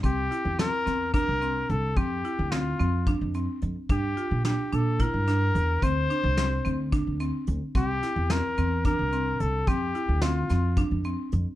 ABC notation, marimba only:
X:1
M:7/8
L:1/8
Q:1/4=109
K:Cmix
V:1 name="Marimba"
C E C C D C2 | C E C C D C2 | D F D D E D2 | C D C C D C2 |
C E C C D C2 | C E C C D C2 |]